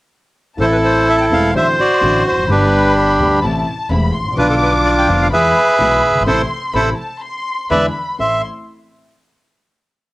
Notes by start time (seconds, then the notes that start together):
0.57 A1 A2 E3 A3 C4 E4 A4 C5 A5
0.61 A4
0.72 B4
0.85 C5
1.09 E5
1.17 G5 A5
1.30 E1 E2 E3 A3 C4 E4 A4 F5
1.54 A1 A2 D3 F#3 A3 C4 D4 F#4 C5 E5 C6
1.80 F#4 D5
2.01 A1 A2 D3 F#3 A3 C4 D4 F#4
2.27 E1 E2 C5
2.36 F1 F2
2.42 F#1 F#2
2.47 G1 G2 D3 G3 B3 D4 G4 B5
2.51 G4 B4
3.19 D2 D3 G3 B3 D4 G4
3.42 A1 A2 C3 E3 A3 C4 E4 A5
3.89 E1 E2 C3 E3 A3 C4 E4 B5
4.12 C6
4.19 G#1
4.25 A1
4.31 A#1
4.35 B1 B2 D3 F3 B3 D4 F4 B4 D6
4.40 F4
4.50 A4
4.62 B4
4.85 D5
4.98 G5
5.07 F1 F2 D3 F3 B3 D4 F4
5.22 F5
5.31 E2 E3 G#3 B3 E4 G#4 B4 E5 B5
5.79 B1 B2 E3 G#3 B3 E4 G#4
6.09 F#1
6.15 G1
6.20 G#1
6.26 A1 C3 E3 A3 C4 E4 A4 C5 C6
6.73 A1 C3 E3 A3 C4 E4 A4 C5 B5
6.97 A5
7.21 C6
7.70 E2 D3 E3 G#3 B3 D4 E4 B4 D5 E5 B5
8.18 A1 A3 C4 E4 A4 E5 C6